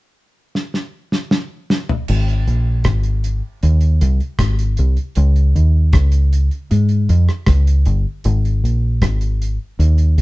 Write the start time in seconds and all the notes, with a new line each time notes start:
0.55 snare
0.74 snare
1.12 snare
1.31 snare
1.70 snare
1.89 floor tom
2.08 G#1, crash
2.28 closed hi-hat
2.47 A#1, closed hi-hat
2.84 G#1, kick, cross-stick, closed hi-hat
3.03 closed hi-hat
3.24 closed hi-hat
3.63 D#2, closed hi-hat
3.81 closed hi-hat
4.01 C2, closed hi-hat
4.20 closed hi-hat
4.39 G#1, kick, cross-stick, closed hi-hat
4.59 closed hi-hat
4.77 C2, closed hi-hat
4.97 closed hi-hat
5.15 C#2, closed hi-hat
5.36 closed hi-hat
5.55 D#2, closed hi-hat
5.93 C#2, kick, cross-stick, closed hi-hat
6.12 closed hi-hat
6.33 closed hi-hat
6.51 closed hi-hat
6.71 G#2, closed hi-hat
6.89 closed hi-hat
7.09 F2, closed hi-hat
7.28 cross-stick, closed hi-hat
7.46 C#2, kick, cross-stick, closed hi-hat
7.67 closed hi-hat
7.85 G1, closed hi-hat
8.24 G#1, closed hi-hat
8.45 closed hi-hat
8.64 A#1, closed hi-hat
9.02 G#1, kick, cross-stick, closed hi-hat
9.21 closed hi-hat
9.42 closed hi-hat
9.79 D#2, closed hi-hat
9.98 closed hi-hat
10.18 C2, closed hi-hat